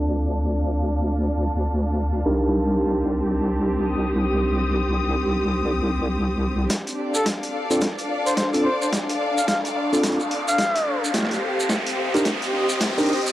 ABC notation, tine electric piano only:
X:1
M:4/4
L:1/16
Q:"Swing 16ths" 1/4=108
K:Dphr
V:1 name="Tine electric piano"
[CDFA]16 | [DEGB]16- | [DEGB]16 | z6 z [CDFA] z4 z [CDFA] z2 |
z6 z [CDFA]2 z6 z | z6 z [DEGB] z4 z [DEGB] z2 |]